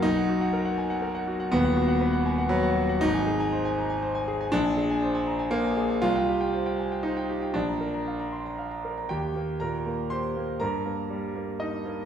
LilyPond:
\new Staff \with { instrumentName = "Grand piano" } { \time 3/4 \key ces \lydian \tempo 4 = 120 << { b,,16 fis''16 fis'16 fis''16 ais'16 fis''16 aes''16 fis''16 ais'16 fis''16 fis'16 fis''16 | <dis,, dis,>16 fis''16 fis'16 fis''16 b'16 fis''16 aes''16 fis''16 b'16 fis''16 fis'16 fis''16 | \key ees \major aes,,16 aes''16 aes'16 aes''16 c''16 aes''16 bes''16 aes''16 c''16 aes''16 aes'16 aes''16 | bes,,16 aes''16 aes'16 aes''16 c''16 aes''16 bes''16 aes''16 c''16 aes''16 aes'16 aes''16 |
c,16 g''16 g'16 g''16 c''16 g''16 aes''16 g''16 c''16 g''16 g'16 g''16 | bes,,16 bes''16 bes'16 bes''16 f''16 bes''16 c'''16 bes''16 f''16 bes''16 bes'16 bes''16 | ees,8 bes8 bes,8 bes8 g'8 bes8 | g,8 bes8 g8 bes8. r16 bes8 | } \\ { dis'2. | b2 fis4 | ees'2. | d'2 bes4 |
f'2 ees'4 | d'2~ d'8 r8 | <g' g''>4 <bes' bes''>4 <c'' c'''>4 | <bes' bes''>2 <ees' ees''>4 | } >> }